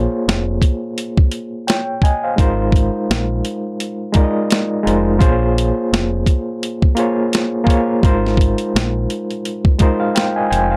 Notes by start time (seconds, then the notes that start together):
Already playing: A#3 F4 G#4 C5 C#5
0.28 F1, snare, closed hi-hat
0.62 kick, closed hi-hat
0.98 closed hi-hat
1.18 kick
1.31 closed hi-hat
1.67 C#5 G5, snare, closed hi-hat
2.02 D#5 G#5, kick, closed hi-hat
2.24 C5 F5
2.36 G#1 G#3 D#4 F4 A#4, kick, closed hi-hat
2.41 C5
2.72 kick, closed hi-hat
3.10 A#1, snare, closed hi-hat
3.45 closed hi-hat
3.80 closed hi-hat
4.12 G#3 D#4 F4 A#4, kick, closed hi-hat
4.17 D5
4.24 D#5
4.51 snare, closed hi-hat
4.83 F1 G#3 D#4 F4 A#4
4.87 C5, closed hi-hat
5.18 A#1 A#3 F4 G#4 C5, kick, closed hi-hat
5.23 C#5
5.58 closed hi-hat
5.93 F1, snare, closed hi-hat
6.26 kick, closed hi-hat
6.63 closed hi-hat
6.82 kick
6.95 A#3 F4 G#4 C5, closed hi-hat
7.00 C#5
7.33 snare, closed hi-hat
7.64 A#3 F4 G#4 C5, kick
7.69 C#5, closed hi-hat
8.01 G#1 G#3 D#4 F4 A#4, kick, closed hi-hat
8.06 C5
8.26 snare
8.37 kick, closed hi-hat
8.58 closed hi-hat
8.75 A#1, snare, closed hi-hat
9.10 closed hi-hat
9.31 closed hi-hat
9.45 closed hi-hat
9.65 kick
9.78 G#3 D#4 F4 A#4 D#5, kick, closed hi-hat
9.83 C5
10.00 F5
10.15 C5 F5 G5, snare, closed hi-hat
10.36 D#5 G#5
10.50 F1 C5 G5 G#5, closed hi-hat
10.71 C5 F5